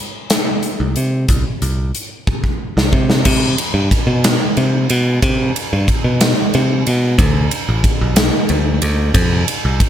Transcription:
0.30 snare loud
0.30 closed hi-hat loud
0.63 closed hi-hat medium
0.80 0.94 C2 medium
0.96 1.25 C3 medium
0.96 closed hi-hat medium
1.28 1.43 C2 medium
1.28 kick loud
1.28 closed hi-hat medium
1.62 1.91 C2 medium
1.62 closed hi-hat medium
1.95 closed hi-hat medium
2.27 kick medium
2.44 kick medium
2.77 2.91 C2 medium
2.77 snare medium
2.93 3.21 C3 medium
2.93 kick medium
3.10 snare medium
3.25 3.54 C3 loud
3.25 kick loud
3.25 crash loud
3.58 ride medium
3.74 3.89 G2 medium
3.91 kick medium
3.91 ride medium
4.07 4.36 B2 medium
4.24 snare loud
4.24 ride loud
4.57 4.86 C3 loud
4.57 ride medium
4.90 5.19 B2 loud
4.90 ride medium
5.22 5.51 C3 loud
5.22 kick loud
5.22 ride loud
5.56 ride medium
5.73 5.87 G2 loud
5.88 kick medium
5.88 ride medium
6.04 6.33 B2 medium
6.21 snare loud
6.21 ride loud
6.54 6.83 C3 loud
6.54 ride medium
6.87 7.15 B2 loud
6.87 ride medium
7.18 7.47 D2 loud
7.18 kick loud
7.18 ride loud
7.51 ride medium
7.69 7.83 A1 loud
7.84 kick medium
7.84 ride medium
8.01 8.30 B1 loud
8.16 snare loud
8.16 ride loud
8.49 8.78 D2 loud
8.49 ride medium
8.82 9.11 D2 loud
8.82 ride medium
9.14 9.43 F2 loud
9.14 kick loud
9.14 ride loud
9.48 ride loud
9.65 9.79 C2 loud
9.80 kick medium
9.80 ride medium

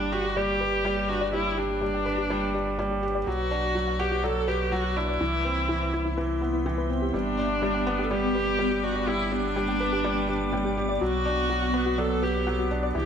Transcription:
0.00 3.25 G1 medium
0.00 0.37 G3 medium
0.00 0.14 D4 medium
0.00 1.09 D4 medium
0.00 5.16 B4 medium
0.00 0.07 G5 medium
0.00 3.23 D6 medium
0.12 0.38 F#4 medium
0.12 0.35 G4 medium
0.24 0.28 G4 medium
0.36 0.60 G3 medium
0.36 1.10 G4 medium
0.36 0.43 D5 medium
0.61 0.65 G4 medium
0.61 0.84 B4 medium
0.85 1.08 G3 medium
0.85 0.94 G5 medium
0.97 1.03 G4 medium
1.09 1.23 D4 medium
1.09 1.33 F#4 medium
1.21 1.25 D5 medium
1.33 1.56 G3 medium
1.33 1.59 E4 medium
1.33 1.40 G4 medium
1.33 5.17 F#5 medium
1.57 3.03 D4 medium
1.57 1.81 G4 medium
1.57 1.61 D5 medium
1.81 2.05 G3 medium
1.81 1.88 G4 medium
1.94 2.00 G5 medium
2.06 2.29 B4 medium
2.18 2.22 G4 medium
2.30 2.53 G3 medium
2.30 2.36 D5 loud
2.54 2.77 D4 medium
2.54 2.58 G4 medium
2.79 3.02 G3 medium
2.79 2.88 G5 medium
2.91 2.97 G4 medium
3.03 3.17 G4 medium
3.15 3.19 D5 loud
3.27 5.18 B1 medium
3.27 3.50 F#3 medium
3.27 3.33 F#4 medium
3.27 4.01 F#4 medium
3.27 5.19 D6 medium
3.51 3.74 D4 medium
3.51 3.55 D5 medium
3.75 3.98 F#3 medium
3.75 3.82 F#4 medium
3.87 3.94 F#5 medium
3.99 4.22 F#4 medium
3.99 4.25 G4 medium
4.12 4.15 F#4 medium
4.24 4.47 F#3 medium
4.24 4.50 A4 medium
4.24 4.30 D5 medium
4.48 4.52 F#4 medium
4.48 4.73 G4 medium
4.48 4.71 B4 medium
4.72 4.95 F#3 medium
4.72 4.98 F#4 medium
4.72 4.82 F#5 medium
4.84 4.90 F#4 medium
4.96 5.10 D4 medium
4.96 6.42 E4 medium
5.08 5.12 D5 medium
5.20 7.12 C2 medium
5.20 5.44 E3 medium
5.20 12.91 B3 medium
5.20 5.27 E4 medium
5.20 7.12 E5 medium
5.20 7.12 C6 medium
5.45 5.68 C4 medium
5.45 5.49 B4 medium
5.69 5.92 E3 medium
5.69 5.75 E4 medium
5.81 5.87 C5 medium
5.93 6.16 E4 medium
6.05 6.09 E4 medium
6.17 6.40 E3 medium
6.17 6.24 B4 medium
6.41 6.65 B3 medium
6.41 6.45 E4 medium
6.53 6.60 E4 medium
6.66 6.89 E3 medium
6.66 6.72 G5 medium
6.78 6.87 B4 medium
6.90 7.04 C4 medium
7.02 7.11 G4 medium
7.14 10.99 G1 medium
7.14 7.37 G3 medium
7.14 8.05 D4 medium
7.14 7.20 G4 medium
7.14 10.97 G5 medium
7.14 12.91 D6 medium
7.38 7.61 D4 medium
7.38 7.42 D5 medium
7.62 7.85 G3 medium
7.62 7.69 G4 medium
7.74 7.81 G5 medium
7.87 8.00 B3 medium
7.99 8.03 G4 medium
8.04 8.13 A4 medium
8.11 8.34 G3 medium
8.11 8.85 G4 medium
8.11 8.17 D5 medium
8.35 8.39 G4 medium
8.35 8.58 B4 medium
8.59 8.82 G3 medium
8.59 8.69 G5 medium
8.71 8.78 G4 medium
8.83 8.97 D4 medium
8.83 9.10 F#4 medium
8.95 8.99 D5 medium
9.07 9.30 G3 medium
9.07 9.33 E4 medium
9.07 9.14 G4 medium
9.32 10.77 D4 medium
9.32 9.55 G4 medium
9.32 9.36 D5 medium
9.56 9.79 G3 medium
9.56 9.62 G4 medium
9.68 9.74 G5 medium
9.80 10.03 B4 medium
9.92 9.96 G4 medium
10.04 10.27 G3 medium
10.04 10.11 D5 medium
10.28 10.52 D4 medium
10.28 10.32 G4 medium
10.53 10.76 G3 medium
10.53 10.62 G5 medium
10.65 10.71 G4 medium
10.77 10.91 G4 medium
10.89 10.93 D5 loud
11.01 12.92 B1 medium
11.01 11.24 F#3 medium
11.01 12.00 F#4 medium
11.01 11.08 F#4 medium
11.01 12.93 F#5 medium
11.25 11.49 D4 medium
11.25 11.29 D5 medium
11.50 11.73 F#3 medium
11.50 11.56 F#4 medium
11.62 11.68 F#5 medium
11.74 11.88 B3 medium
11.86 11.90 F#4 medium
11.98 12.21 F#3 medium
11.98 12.24 A4 medium
11.98 12.04 D5 medium
12.22 12.26 F#4 medium
12.22 12.71 G4 medium
12.22 12.45 B4 medium
12.47 12.70 F#3 medium
12.47 12.56 F#5 medium
12.59 12.65 F#4 medium
12.71 12.85 D4 medium
12.83 12.87 D5 loud
12.95 13.05 C2 medium
12.95 13.05 E3 medium
12.95 13.01 E4 medium
12.95 13.05 G4 medium
12.95 13.05 E6 medium

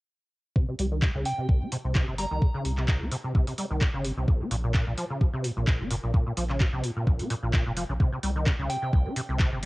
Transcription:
0.56 0.66 C3 medium
0.56 kick loud
0.68 0.74 C3 medium
0.79 1.11 C2 loud
0.79 0.86 G3 medium
0.79 open hi-hat medium
0.92 1.04 D#3 medium
1.02 1.07 C3 medium
1.02 kick loud
1.02 clap loud
1.15 1.24 C2 medium
1.15 1.27 C#3 loud
1.25 1.33 C3 medium
1.25 1.46 G5 medium
1.25 open hi-hat loud
1.38 1.47 C3 medium
1.49 1.63 C2 medium
1.49 1.59 C2 medium
1.49 kick loud
1.61 1.70 D#4 medium
1.72 1.76 C3 loud
1.72 open hi-hat loud
1.85 2.03 C2 medium
1.85 1.93 C3 medium
1.95 2.06 C3 medium
1.95 kick loud
1.95 clap loud
2.08 2.26 G1 medium
2.08 2.14 C3 medium
2.18 2.25 G3 medium
2.18 2.54 A#5 medium
2.18 open hi-hat loud
2.31 2.40 C2 medium
2.31 2.43 D#3 medium
2.42 2.46 C3 medium
2.42 kick loud
2.54 2.67 C#3 loud
2.65 2.97 C2 loud
2.65 2.72 C3 medium
2.65 open hi-hat loud
2.77 2.87 C3 medium
2.77 clap soft
2.88 3.02 C2 medium
2.88 kick loud
2.88 clap loud
3.01 3.10 C2 loud
3.01 3.10 D#4 medium
3.11 3.16 C3 loud
3.11 open hi-hat loud
3.24 3.33 C3 medium
3.35 3.45 C2 medium
3.35 3.45 C3 medium
3.35 kick loud
3.47 3.53 C3 medium
3.47 open hi-hat medium
3.58 3.65 G3 medium
3.58 open hi-hat loud
3.71 3.89 C2 medium
3.71 3.83 D#3 medium
3.81 3.86 C3 medium
3.81 kick loud
3.81 clap loud
3.94 4.12 G1 medium
3.94 4.06 C#3 loud
4.04 4.11 C3 medium
4.04 open hi-hat loud
4.17 4.26 C2 medium
4.17 4.26 C3 medium
4.28 4.42 A#1 medium
4.28 kick loud
4.40 4.49 C#4 medium
4.51 4.83 A#1 loud
4.51 4.55 A#2 loud
4.51 open hi-hat loud
4.64 4.73 A#2 medium
4.74 4.85 A#2 medium
4.74 kick loud
4.74 clap loud
4.87 4.96 A#1 medium
4.87 4.93 A#2 medium
4.98 5.05 F3 medium
4.98 open hi-hat loud
5.10 5.23 C#3 medium
5.21 5.31 A#1 medium
5.21 5.25 A#2 medium
5.21 kick loud
5.33 5.46 C3 loud
5.44 5.51 A#2 medium
5.44 open hi-hat loud
5.57 5.75 A#1 medium
5.57 5.66 A#2 medium
5.67 5.81 A#1 medium
5.67 kick loud
5.67 clap loud
5.80 5.99 F1 medium
5.80 5.89 C#4 medium
5.91 5.95 A#2 loud
5.91 open hi-hat loud
6.03 6.12 A#1 medium
6.03 6.12 A#2 medium
6.14 6.24 A#2 medium
6.14 kick loud
6.26 6.32 A#2 medium
6.37 6.69 A#1 loud
6.37 6.44 F3 medium
6.37 open hi-hat loud
6.50 6.62 C#3 medium
6.50 clap soft
6.60 6.65 A#2 medium
6.60 kick loud
6.60 clap loud
6.73 6.82 A#1 medium
6.73 6.85 C3 loud
6.84 6.91 A#2 medium
6.84 open hi-hat loud
6.96 7.05 A#2 medium
7.07 7.21 A#1 medium
7.07 7.17 A#1 medium
7.07 kick loud
7.19 7.28 C#4 medium
7.19 open hi-hat medium
7.30 7.34 A#2 loud
7.30 open hi-hat loud
7.43 7.61 A#1 medium
7.43 7.52 A#2 medium
7.53 7.64 A#2 medium
7.53 kick loud
7.53 clap loud
7.66 7.85 F1 medium
7.66 7.72 A#2 medium
7.77 7.84 F3 medium
7.77 open hi-hat loud
7.89 7.98 A#1 medium
7.89 7.93 C#3 medium
8.00 8.10 C3 medium
8.00 kick loud
8.12 8.18 C3 medium
8.23 8.55 C2 loud
8.23 8.30 G3 medium
8.23 open hi-hat loud
8.36 8.48 D#3 medium
8.46 8.51 C3 medium
8.46 kick loud
8.46 clap loud
8.59 8.68 C2 medium
8.59 8.71 C#3 loud
8.70 8.77 C3 medium
8.70 8.90 G5 medium
8.70 open hi-hat loud
8.82 8.91 C3 medium
8.93 9.07 C2 medium
8.93 9.03 C2 medium
8.93 kick loud
9.05 9.14 D#4 medium
9.16 9.20 C3 loud
9.16 open hi-hat loud
9.29 9.47 C2 medium
9.29 9.38 C3 medium
9.39 9.50 C3 medium
9.39 kick loud
9.39 clap loud
9.52 9.65 G1 loud
9.52 9.58 C3 medium

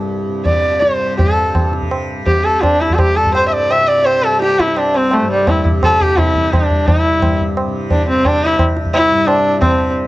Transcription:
0.00 2.71 C2 medium
0.00 1.20 G2 medium
0.00 0.28 C3 medium
0.28 0.80 C3 medium
0.45 0.82 D5 medium
0.45 tabla tin medium
0.45 tabla ge medium
0.80 1.70 C3 medium
0.80 1.16 C5 medium
0.80 tabla te medium
1.17 3.22 G2 medium
1.17 1.68 A4 medium
1.17 tabla tin loud
1.17 tabla ge loud
1.55 tabla na medium
1.55 tabla ge medium
1.70 2.21 C3 medium
1.70 tabla te medium
1.82 tabla ge medium
1.91 tabla na medium
2.21 3.73 C3 medium
2.27 2.46 G4 medium
2.27 tabla tin medium
2.27 tabla ge medium
2.45 2.64 A4 medium
2.63 2.82 D4 loud
2.63 tabla na medium
2.63 tabla ge medium
2.72 4.71 C2 medium
2.81 2.96 E4 medium
2.81 tabla te medium
2.90 tabla ge medium
2.95 3.00 A4 medium
2.99 3.18 G4 loud
2.99 tabla na medium
2.99 tabla ge medium
3.16 3.34 A4 loud
3.16 tabla te medium
3.22 5.21 G2 medium
3.22 tabla ge medium
3.34 3.47 C5 loud
3.34 tabla na medium
3.48 3.54 E5 medium
3.53 3.72 D5 loud
3.71 4.22 C3 medium
3.71 3.89 E5 loud
3.71 tabla na medium
3.88 4.07 D5 loud
4.05 4.25 C5 loud
4.05 tabla na medium
4.22 5.71 C3 medium
4.22 4.41 A4 loud
4.41 4.61 G4 loud
4.41 tabla te medium
4.50 tabla te medium
4.60 4.79 E4 loud
4.60 tabla ke medium
4.68 6.68 C2 medium
4.68 tabla te medium
4.76 4.98 D4 medium
4.76 tabla na medium
4.94 5.15 C4 loud
4.94 tabla na medium
5.11 5.30 A3 medium
5.11 tabla na medium
5.22 7.18 G2 medium
5.30 5.50 G3 medium
5.47 5.66 E4 medium
5.47 tabla na medium
5.47 tabla ge medium
5.65 tabla ge medium
5.71 6.20 C3 medium
5.83 6.03 A4 loud
5.83 tabla na medium
5.83 tabla ge medium
6.01 6.20 G4 loud
6.01 tabla ge medium
6.18 7.66 C3 medium
6.18 6.54 E4 medium
6.18 tabla na medium
6.18 tabla ge medium
6.35 tabla ge medium
6.52 6.89 D4 medium
6.52 tabla na medium
6.52 tabla ge medium
6.69 8.63 C2 medium
6.69 tabla ge medium
6.87 7.39 E4 medium
6.87 tabla tin loud
6.87 tabla ge loud
7.18 9.10 G2 medium
7.22 tabla na medium
7.22 tabla ge medium
7.40 tabla ge medium
7.57 tabla na medium
7.66 8.14 C3 medium
7.91 8.07 D4 medium
7.91 tabla tin medium
7.91 tabla ge medium
8.09 8.28 C4 medium
8.14 9.59 C3 medium
8.25 8.46 D4 loud
8.25 tabla na medium
8.25 tabla ge medium
8.44 8.60 E4 loud
8.59 10.07 C2 medium
8.59 tabla na medium
8.59 tabla ge medium
8.77 tabla te medium
8.85 tabla ge medium
8.94 9.29 E4 loud
8.94 tabla na medium
9.11 10.07 G2 medium
9.27 9.60 D4 loud
9.27 tabla na medium
9.59 10.07 C3 medium
9.59 9.93 C4 medium
9.59 tabla na loud
9.59 tabla ge medium

